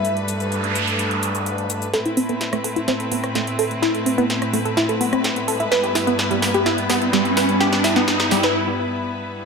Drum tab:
HH |xxxxxxxxxxxxxxxx|xxoxxxoxxxoxxxox|xxoxxxoxxxoxxxox|xxoxxxoxxxoxxxox|
SH |x-xxx-xxx-xxx-xx|----------------|----------------|----------------|
SD |----------------|o---or--o--ro---|o---or--o--ro---|o-o-o-o-o-o-o-o-|

HH |xxoxxxox--------|
SH |----------------|
SD |oooooooo--------|